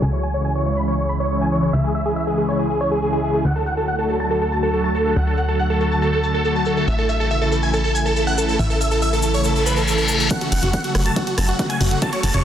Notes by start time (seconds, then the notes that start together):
0.02 C#2 G#5
0.13 C#5
0.23 G#5
0.34 C#5
0.45 G#5
0.55 C#5
0.66 C#5
0.77 B5
0.88 C#5
0.98 C#5
1.09 B5
1.20 C#5
1.31 C#5
1.41 G#5
1.52 C#5
1.63 C#5
1.73 C#2 E5
1.84 G#4
1.95 E5
2.06 G#4
2.16 E5
2.27 G#4
2.38 G#4
2.48 C#5
2.59 G#4
2.70 G#4
2.81 C#5
2.91 G#4
3.02 G#4
3.13 G#4
3.23 G#4
3.34 G#4
3.45 D2 F#5, shaker
3.56 A4, shaker
3.66 F#5, shaker
3.77 A4, shaker
3.88 F#5, shaker
3.98 A4, shaker
4.09 A4, shaker
4.20 A5, shaker
4.31 A4, shaker
4.41 A4, shaker
4.52 A5, shaker
4.63 A4, shaker
4.73 A4, shaker
4.84 A5, shaker
4.95 A4, shaker
5.05 A4, shaker
5.16 D2 F#5, shaker
5.27 A4, shaker
5.37 F#5, shaker
5.48 A4, shaker
5.59 F#5, shaker
5.70 A4, shaker
5.81 A4, shaker
5.91 A5, shaker
6.02 A4, shaker
6.13 A4, shaker
6.24 A5, shaker
6.34 A4, shaker
6.45 A4, shaker
6.56 A5, shaker
6.65 A4, shaker
6.77 A4, shaker
6.88 A1 E5, shaker
6.98 A4, shaker
7.09 E5, shaker
7.20 A4, shaker
7.31 E5, shaker
7.41 A4, shaker
7.52 A4, shaker
7.63 G#5, shaker
7.73 A4, shaker
7.84 A4, shaker
7.95 G#5, shaker
8.05 A4, shaker
8.16 A4, shaker
8.27 F#5, shaker
8.38 A4, shaker
8.48 A4, shaker
8.59 A1 E5, shaker
8.70 A4, shaker
8.81 E5, shaker
8.91 A4, shaker
9.02 E5, shaker
9.13 A4, shaker
9.22 A4, shaker
9.34 C#5, shaker
9.44 A4, reverse cymbal, shaker
9.56 A4, shaker
9.66 B4, shaker
9.76 A4, shaker
9.88 A4, shaker
9.98 A4, shaker
10.08 A4, shaker
10.20 A4, shaker
10.31 F#5, kick, closed hi-hat, riser
10.41 F#4, closed hi-hat
10.52 F#1 F#5, open hi-hat
10.63 F#1 F#4, closed hi-hat
10.73 F#5, kick, closed hi-hat
10.84 F#4, closed hi-hat
10.95 F#1 F#4, cross-stick, open hi-hat
11.06 A5, closed hi-hat
11.16 F#4, kick, closed hi-hat
11.27 F#4, closed hi-hat
11.38 F#1 A5, cross-stick, open hi-hat
11.48 F#4, closed hi-hat
11.59 F#4, kick, closed hi-hat
11.70 G#5, closed hi-hat
11.80 F#1 F#4, open hi-hat
11.91 F#4, closed hi-hat
12.02 A5, kick, closed hi-hat
12.13 C#5, closed hi-hat
12.23 F#1 A5, open hi-hat
12.34 F#1 C#5, closed hi-hat